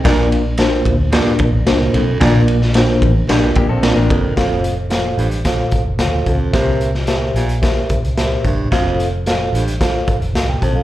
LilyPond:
<<
  \new Staff \with { instrumentName = "Tine electric piano" } { \time 4/4 \key bes \major \tempo 4 = 111 <bes d' f' bes' d''>8 r8 <bes d' f' bes' c''>8 r8 <bes d' f' bes' d''>8 r8 <bes d' f' bes' c''>8 r8 | <bes d' f' bes' d''>8 r8 <bes d' f' bes' c''>8 r8 <bes d' f' bes' d''>8 r8 <bes d' f' bes' d''>8 r8 | <f' a' c'' f''>8 r8 <f' a' c'' f''>8 r8 <f' a' c'' f''>8 r8 <f' a' c'' f''>8 r8 | <g' bes' c'' e''>8 r8 <g' bes' c'' e''>8 r8 <g' bes' c'' e''>8 r8 <g' bes' c'' e''>8 r8 |
<f' a' c'' f''>8 r8 <f' a' c'' f''>8 r8 <f' a' c'' f''>8 r8 <a' f''>16 g''16 <c'' a''>16 <a' f''>16 | }
  \new Staff \with { instrumentName = "Tine electric piano" } { \clef bass \time 4/4 \key bes \major bes,4. r2 r8 | bes,4. r2 r8 | r1 | c4. r2 r8 |
r1 | }
  \new Staff \with { instrumentName = "Clean electric guitar" } { \time 4/4 \key bes \major r1 | r2 r8 <bes g'>16 <c' a'>8 <d' bes'>8. | r1 | r1 |
r1 | }
  \new Staff \with { instrumentName = "Baritone saxophone" } { \clef bass \time 4/4 \key bes \major bes,8 r4. g,8 r4 f,8 | bes,8 r4. g,8 r4 f,8 | f,8. r8. g,8 r4. f,8 | c8. r8. bes,8 r4. g,8 |
f,8. r8. g,8 r4. f,8 | }
  \new Staff \with { instrumentName = "Fingered electric bass" } { \clef bass \time 4/4 \key bes \major bes,,4. d,8. r16 bes,,16 a,,16 c,8 ces,8 | bes,,4. a,,8 bes,,8 r16 bes,,8 a,,16 r8 | f,,4. a,,8. r16 g,,16 f,,16 d,8 des,8 | c,4. bes,,8. r16 c,16 c,8. ges,,8 |
f,,4. a,,8. r16 g,,16 f,,16 c,8 ces,8 | }
  \new DrumStaff \with { instrumentName = "Drums" } \drummode { \time 4/4 <bd cymr sn>8 cymr8 <cymr sn>8 <bd cymr>8 <cymr sn>8 <bd cymr>8 <cymr sn>8 cymr8 | <bd cymr sn>8 cymr16 sn16 <cymr sn>8 <bd cymr>8 <cymr sn>8 <bd cymr>8 <cymr sn>8 <bd cymr>8 | <hh bd sn>8 hh8 <hh sn>8 hh16 hh16 <hh bd sn>8 <hh bd>8 <hh sn>8 <hh bd>8 | <hh bd sn>8 hh16 sn16 <hh sn>8 hh16 hh16 <hh bd sn>8 <hh bd>16 hh16 <hh sn>8 <hh bd>8 |
<hh bd sn>8 hh8 <hh sn>8 hh16 hh16 <hh bd sn>8 <hh bd>16 hh16 <hh sn>8 <hh bd>8 | }
>>